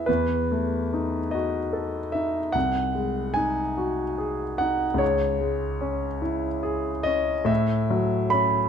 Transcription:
0.00 0.10 E4 soft
0.00 0.10 G#4 soft
0.00 0.06 B4 soft
0.00 0.10 E5 medium
0.06 2.52 E2 soft
0.06 1.33 B4 medium
0.51 1.18 A3 soft
0.93 1.59 D#4 soft
1.31 1.99 F#4 soft
1.31 2.13 D#5 medium
1.73 2.38 A4 soft
2.12 2.55 D#4 soft
2.12 2.54 E5 medium
2.52 4.97 C2 soft
2.52 3.35 F#5 medium
2.95 3.61 G#3 soft
3.34 4.02 D#4 soft
3.34 4.59 G#5 medium
3.77 4.44 F#4 soft
4.18 4.84 G#4 soft
4.58 5.01 D#4 soft
4.58 5.00 F#5 medium
4.94 7.42 C#2 medium
4.98 6.20 C#5 medium
5.41 6.05 G#3 soft
5.81 6.46 C#4 soft
6.22 6.89 E4 soft
6.63 7.32 G#4 soft
7.03 7.49 C#4 soft
7.03 7.48 D#5 medium
7.45 8.69 A2 medium
7.45 8.32 E5 medium
7.90 8.57 F#3 soft
8.30 8.69 C#4 soft
8.30 8.69 B5 medium

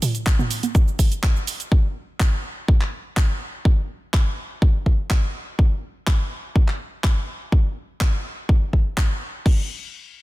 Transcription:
0.02 open hi-hat loud
0.02 mid tom medium
0.02 shaker medium
0.15 closed hi-hat medium
0.15 shaker soft
0.26 kick loud
0.26 clap loud
0.26 closed hi-hat soft
0.26 shaker soft
0.39 mid tom medium
0.39 high conga medium
0.39 shaker soft
0.51 open hi-hat loud
0.51 shaker medium
0.63 closed hi-hat medium
0.63 high conga medium
0.63 shaker soft
0.75 kick loud
0.75 closed hi-hat soft
0.75 shaker soft
0.88 shaker soft
0.99 kick medium
0.99 open hi-hat loud
0.99 shaker medium
1.12 closed hi-hat medium
1.12 shaker soft
1.23 kick loud
1.23 clap loud
1.23 shaker soft
1.36 shaker soft
1.47 open hi-hat loud
1.47 shaker medium
1.60 closed hi-hat medium
1.60 shaker soft
1.72 kick loud
2.20 kick loud
2.20 clap loud
2.68 kick loud
2.81 clap soft
3.17 kick loud
3.17 clap loud
3.65 kick loud
4.14 kick loud
4.14 clap loud
4.62 kick loud
4.86 kick medium
5.10 kick loud
5.10 clap loud
5.59 kick loud
6.07 kick loud
6.07 clap loud
6.56 kick loud
6.68 clap soft
7.04 kick loud
7.04 clap loud
7.52 kick loud
8.01 kick loud
8.01 clap loud
8.49 kick loud
8.73 kick medium
8.97 kick loud
8.97 clap loud
9.46 kick loud
9.46 crash medium

